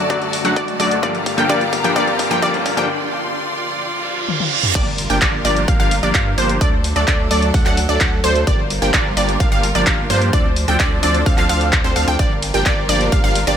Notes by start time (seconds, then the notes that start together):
Already playing: F#4 D5 A5, riser
0.09 D2 F#2 D3 F#3 A3 D4 F#4 D5, kick, closed hi-hat
0.22 closed hi-hat
0.33 open hi-hat
0.44 D2 F#2 D3 F#3 A3 D4 F#4 F#5, closed hi-hat
0.56 D2 F#3 D4 F#4 D5, kick, closed hi-hat
0.68 closed hi-hat
0.79 D2 F#2 D3 F#3 A3 D4 F#4 D5, open hi-hat
0.91 closed hi-hat
1.02 G1 G2 D3 F3 G3 A#3 D4 F4 G4 D5 F5 A#5, kick, closed hi-hat
1.15 closed hi-hat
1.26 kick, open hi-hat
1.37 G2 D3 F3 G3 A#3 D4 F4 G4 G5, closed hi-hat
1.49 G1 G2 D3 F3 G3 A#3 D4 F4 G4 D5, kick, closed hi-hat
1.61 closed hi-hat
1.73 kick, open hi-hat
1.84 G2 D3 F3 G3 A#3 D4 F4 G4 G5, closed hi-hat
1.95 G1 G2 D3 F3 G3 A#3 D4 F4 G4 D5, kick, closed hi-hat
2.08 closed hi-hat
2.19 kick, open hi-hat
2.30 G2 D3 F3 G3 A#3 D4 F4 G4 G5, closed hi-hat
2.42 G1 G2 D3 F3 G3 A#3 D4 F4 G4 D5, kick, closed hi-hat
2.54 closed hi-hat
2.66 kick, open hi-hat
2.77 G2 D3 F3 G3 A#3 D4 F4 G4 G5, closed hi-hat
2.89 F4 D5 C6
3.82 reverse cymbal
4.29 high tom
4.40 high tom
4.63 mid tom
4.75 G1 F3 G3 A#3 D4 F4 G4 A#4 D5, kick, closed hi-hat, crash, impact
4.98 open hi-hat
5.10 G1 F3 A#3 D4 G4 G5, closed hi-hat
5.21 G1 F3 A#3 D4 G4 D5, kick, clap, closed hi-hat
5.45 G1 F3 A#3 D4 G4 D5, open hi-hat
5.57 closed hi-hat
5.68 G1 F3 A#3 D4 G4 F5, kick, closed hi-hat
5.80 G1 F3 A#3 D4 G4 F5, closed hi-hat
5.91 open hi-hat
6.03 G1 F3 A#3 D4 G4 D5, closed hi-hat
6.14 G2 F3 A#3 D4 G4 F5, kick, clap, closed hi-hat
6.38 G1 F3 A#3 D4 G4 C5, open hi-hat
6.49 closed hi-hat
6.61 D2 F#3 A3 D4 A4 D5, kick, closed hi-hat
6.84 open hi-hat
6.96 D2 F#3 A3 D4 A4 D5, closed hi-hat
7.08 D2 F#3 A3 D4 A4 D5, kick, clap, closed hi-hat
7.31 D2 F#3 A3 D4 A4 D5, open hi-hat
7.42 closed hi-hat
7.54 D2 F#3 A4 F#5, kick, open hi-hat
7.66 D2 F#3 A3 D4 A4 F#5, clap, closed hi-hat
7.77 open hi-hat
7.89 D2 F#3 A3 D4 A4 D5, closed hi-hat
8.00 D2 A4 F#5, kick, clap, closed hi-hat
8.24 D2 F#3 A3 D4 A4 C5, open hi-hat
8.36 closed hi-hat
8.47 G1 F3 G3 A#3 D4 F4 G4 A#4 D5, kick, closed hi-hat
8.70 open hi-hat
8.82 G1 F3 A#3 D4 G4 G5, closed hi-hat
8.94 G1 F3 D5, kick, clap, closed hi-hat
9.17 G1 F3 A#3 D4 G4 D5, open hi-hat
9.29 closed hi-hat
9.40 G1 F3 A#3 D4 G4 F5, kick, closed hi-hat
9.52 G1 F3 A#3 D4 G4 F5, closed hi-hat
9.63 open hi-hat
9.75 G1 F3 A#3 D4 G4 D5, closed hi-hat
9.86 G1 F3 A#3 D4 G4 F5, kick, clap, closed hi-hat
10.10 G2 F3 A#3 D4 G4 C5, open hi-hat
10.22 closed hi-hat
10.33 D2 F3 C4 D4 A4 C5 D5, kick, closed hi-hat
10.56 open hi-hat
10.68 D2 F3 C4 D4 A4 G5, closed hi-hat
10.80 D2 F3 C4 D4 A4 D5, kick, clap, closed hi-hat
11.03 D2 F3 C4 D4 A4 D5, open hi-hat
11.15 closed hi-hat
11.26 D2 F3 C4 D4 A4 F5, kick, open hi-hat
11.38 D2 F3 C4 D4 A4 F5, clap, closed hi-hat
11.49 D2 F3 C4 D4 A4 F5, open hi-hat
11.61 closed hi-hat
11.73 kick, clap, closed hi-hat
11.84 D2 F3 C4 D4 A4 C5, closed hi-hat
11.96 D2 F3 C4 D4 A4 F5, open hi-hat
12.08 D2 F3 C4 D4 A4 G5, closed hi-hat
12.19 G1 F3 G3 A#3 D4 F4 G4 A#4 D5, kick, closed hi-hat
12.42 open hi-hat, ride
12.54 G1 F3 A#3 D4 G4 G5, closed hi-hat
12.66 G1 F3 A#3 D4 G4 D5, kick, clap, closed hi-hat
12.89 G1 F3 A#3 D4 G4 D5, open hi-hat, ride
13.01 closed hi-hat
13.12 G1 F3 A#3 D4 G4 F5, kick, closed hi-hat
13.24 G1 F3 A#3 D4 G4 F5, closed hi-hat
13.35 open hi-hat, ride
13.47 G1 F3 A#3 D4 G4 D5, closed hi-hat